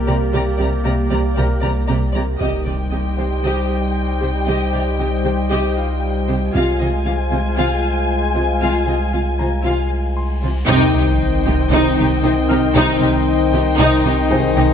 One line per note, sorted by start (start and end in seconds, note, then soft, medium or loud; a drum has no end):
0.00 2.37 C2 medium
0.00 0.30 A#3 soft
0.00 2.37 A#3 medium
0.00 1.34 G4 medium
0.00 2.40 G4 medium
0.00 0.30 A#4 soft
0.00 2.37 A#4 medium
0.00 2.37 D5 medium
0.07 0.15 C2 medium
0.07 0.16 C3 medium
0.07 0.15 G4 soft
0.07 0.15 D5 soft
0.07 0.15 A#5 soft
0.33 0.41 C2 medium
0.33 0.42 C3 medium
0.33 0.52 A#3 medium
0.33 0.42 G4 soft
0.33 0.52 G4 medium
0.33 0.42 D5 medium
0.33 0.42 A#5 medium
0.58 0.67 C2 medium
0.58 0.67 C3 medium
0.58 0.68 G4 soft
0.58 0.66 D5 soft
0.58 0.68 A#5 soft
0.85 0.93 C2 medium
0.85 0.93 C3 medium
0.85 0.93 G4 soft
0.85 0.93 D5 soft
0.85 0.94 A#5 medium
1.10 1.19 C2 medium
1.10 1.19 C3 medium
1.10 1.18 G4 soft
1.10 1.18 D5 soft
1.10 1.19 A#5 soft
1.35 1.45 C2 medium
1.35 1.45 C3 medium
1.35 1.55 A#3 medium
1.35 1.55 G4 medium
1.35 1.46 G4 medium
1.35 2.37 A#4 soft
1.35 1.43 D5 soft
1.35 1.45 A#5 medium
1.61 1.70 C2 medium
1.61 1.71 C3 medium
1.61 1.71 G4 soft
1.61 1.69 D5 soft
1.61 1.70 A#5 soft
1.87 1.96 C2 medium
1.87 1.97 C3 medium
1.87 1.96 G4 soft
1.87 1.95 D5 soft
1.87 1.96 A#5 soft
2.12 2.22 C2 medium
2.12 2.23 C3 medium
2.12 2.23 G4 soft
2.12 2.20 D5 soft
2.12 2.22 A#5 soft
2.39 6.50 C2 soft
2.39 2.48 C3 soft
2.39 6.50 G3 soft
2.39 6.51 G3 medium
2.39 6.50 D#4 soft
2.39 2.65 G4 soft
2.39 6.51 G4 medium
2.39 6.50 C5 medium
2.39 2.64 D#5 soft
2.39 6.50 D#5 medium
2.39 6.50 G5 soft
2.39 impact soft
2.65 2.74 C3 soft
2.65 2.75 G4 soft
2.65 2.73 D5 soft
2.91 3.00 C3 soft
2.91 3.01 G4 soft
2.91 2.99 D#5 soft
3.17 3.26 C3 soft
3.17 3.27 G4 soft
3.17 3.25 C5 soft
3.17 4.69 C5 soft
3.43 3.52 C3 soft
3.43 3.68 G4 soft
3.43 3.68 D#5 soft
4.21 4.29 C3 soft
4.21 4.29 G4 soft
4.21 4.30 C5 soft
4.47 4.55 C3 medium
4.47 4.72 G4 soft
4.47 4.72 D#5 medium
4.73 4.81 C3 soft
4.73 4.81 G4 soft
4.73 4.82 D5 soft
4.99 5.07 C3 soft
4.99 5.08 G4 soft
4.99 5.07 D#5 soft
5.24 5.33 C3 soft
5.24 5.32 G4 soft
5.24 5.32 C5 soft
5.49 5.59 C3 medium
5.49 5.75 G4 medium
5.49 5.74 D#5 medium
5.77 7.28 F4 soft
5.77 7.28 F5 soft
6.27 6.37 C3 soft
6.27 6.37 G4 soft
6.27 6.35 C5 soft
6.54 10.65 C2 medium
6.54 6.63 C3 medium
6.54 10.38 G#3 medium
6.54 10.68 G#3 medium
6.54 6.78 F4 medium
6.54 10.68 F4 medium
6.54 10.43 F4 medium
6.54 10.64 C5 medium
6.54 10.68 F5 medium
6.54 6.79 F5 medium
6.54 10.48 G#5 medium
6.80 6.88 C3 soft
6.80 6.88 F4 soft
6.80 6.88 D#5 soft
7.05 7.14 C3 soft
7.05 7.13 F4 soft
7.05 7.14 F5 soft
7.31 7.40 C3 soft
7.31 7.39 F4 soft
7.31 7.40 C5 soft
7.57 7.66 C3 medium
7.57 7.81 F4 medium
7.57 7.82 F5 medium
8.34 8.44 C3 soft
8.34 8.42 F4 soft
8.34 8.43 C5 soft
8.61 8.70 C3 soft
8.61 8.85 F4 medium
8.61 8.85 F5 medium
8.61 reverse cymbal soft
8.87 8.95 C3 soft
8.87 8.95 F4 soft
8.87 8.95 D#5 soft
9.13 9.21 C3 soft
9.13 9.21 F4 soft
9.13 9.21 F5 soft
9.39 9.47 C3 soft
9.39 9.48 F4 soft
9.39 9.48 C5 soft
9.39 10.64 A#5 soft
9.64 9.73 C3 soft
9.64 9.89 F4 soft
9.64 9.89 F5 soft
10.17 10.65 C6 soft
10.43 10.51 C3 soft
10.43 10.51 F4 soft
10.43 10.51 C5 soft
10.67 10.92 C2 medium
10.67 14.74 C2 medium
10.67 10.93 C3 loud
10.67 14.74 D#3 loud
10.67 14.74 C4 loud
10.67 14.74 D#4 loud
10.67 10.92 D#4 loud
10.67 10.93 D#4 loud
10.67 14.74 C5 loud
10.67 14.74 D#5 loud
10.67 14.74 G5 loud
10.67 12.20 D6 medium
10.67 sub drop medium
10.94 11.02 C2 medium
10.94 11.03 C3 medium
10.94 11.02 D#4 medium
10.94 11.04 G4 medium
11.45 11.54 C2 medium
11.45 11.54 C3 medium
11.45 11.53 D#4 medium
11.45 11.55 G4 medium
11.72 11.80 C2 medium
11.72 11.80 C3 medium
11.72 11.96 D#4 medium
11.97 12.06 C2 medium
11.97 12.06 C3 medium
11.97 12.05 D#4 medium
11.97 12.06 G4 medium
12.24 12.32 C2 medium
12.24 12.32 C3 medium
12.24 12.32 D#4 medium
12.24 12.32 C5 medium
12.49 12.58 C2 medium
12.49 12.58 C3 medium
12.49 12.58 D#4 medium
12.49 12.58 G4 medium
12.49 14.00 F6 medium
12.75 12.84 C2 medium
12.75 12.83 C3 medium
12.75 13.00 D#4 loud
12.75 13.00 D#4 medium
13.01 13.09 C2 medium
13.01 13.10 C3 medium
13.01 13.10 D#4 medium
13.01 13.10 G4 medium
13.53 13.61 C2 medium
13.53 13.61 C3 medium
13.53 13.62 D#4 medium
13.53 13.61 G4 medium
13.78 13.86 C2 medium
13.78 13.87 C3 medium
13.78 14.02 D#4 medium
13.78 14.03 D#4 medium
14.04 14.13 C2 medium
14.04 14.12 C3 medium
14.04 14.13 D#4 medium
14.04 14.13 G4 medium
14.31 14.39 C2 medium
14.31 14.39 C3 medium
14.31 14.39 D#4 medium
14.31 14.74 G#4 medium
14.31 14.39 C5 medium
14.56 14.64 C2 medium
14.56 14.65 C3 medium
14.56 14.64 D#4 medium
14.56 14.65 G4 medium